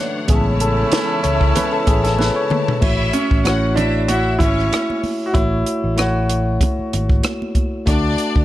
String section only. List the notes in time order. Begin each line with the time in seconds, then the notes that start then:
Already playing: D4 C#5 F#5
0.29 E4 C#5 A5
2.80 E4 E5
3.44 F#4 F#5
3.75 E4 E5
4.08 E4 E5
4.40 C#4 C#5
7.87 D4 D5